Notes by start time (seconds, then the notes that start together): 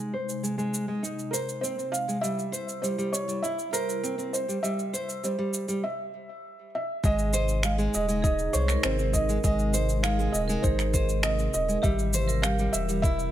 Already playing: C3 G#3 D#4
0.14 C5
0.29 shaker
0.43 G#3, shaker
0.58 G#3, shaker
0.74 shaker
0.88 G#3
1.03 D#4, shaker
1.19 shaker
1.31 A#4 C5, shaker
1.49 shaker
1.61 C4 C5, shaker
1.78 C4, shaker
1.92 F5, shaker
2.08 G#3, shaker
2.21 G3 E4 E5, shaker
2.39 shaker
2.52 C5, shaker
2.69 shaker
2.82 G3 C5, shaker
2.98 G3, shaker
3.12 C#5, shaker
3.28 G3, shaker
3.42 E4 E5, shaker
3.59 shaker
3.73 A#4 C5, shaker
3.89 shaker
4.03 C4, shaker
4.18 C4, shaker
4.33 C5, shaker
4.48 G3, shaker
4.63 G3 E5, shaker
4.79 shaker
4.93 C5, shaker
5.09 shaker
5.23 G3 C5, shaker
5.39 G3
5.54 shaker
5.68 G3, shaker
5.84 E5
6.75 E5
7.03 G#1 C3 G#3 D#4 G#4 D#5, kick, shaker
7.19 shaker
7.33 C5 D#5, shaker
7.49 shaker
7.63 G#3 F5, finger snap, shaker
7.78 G#3, shaker
7.94 D#1 D#5, shaker
8.08 G#3, shaker
8.22 D#4 G#4 D#5, kick, shaker
8.39 shaker
8.53 C2 C5 C#5, shaker
8.68 A#4, finger snap, shaker
8.83 G#1 C4 G#4 C5, finger snap, shaker
8.99 C4, shaker
9.13 D#5, kick, shaker
9.29 G#3, shaker
9.44 G#1 G#3 D#5, kick, shaker
9.59 shaker
9.74 C5, shaker
9.89 shaker
10.03 G#3 G#4 F5, finger snap, shaker
10.19 G#3, shaker
10.32 D#1 D#5, shaker
10.48 G#3 A#4, shaker
10.62 G#1 D#4 G#4 C5, kick, shaker
10.79 finger snap, shaker
10.94 C5 D#5, kick, shaker
11.09 shaker
11.23 C4 D#5, finger snap, shaker
11.38 C4, shaker
11.54 D#1 D#5, shaker
11.68 G#3, shaker
11.82 G#1 C3 E3 G3 G4 E5, kick, shaker
11.99 shaker
12.14 C5, shaker
12.28 A#4, shaker
12.42 G3 G4 F5, finger snap, shaker
12.59 G3, shaker
12.73 E1 E5, shaker
12.89 G3, shaker
13.02 E4 E5, kick, shaker
13.19 shaker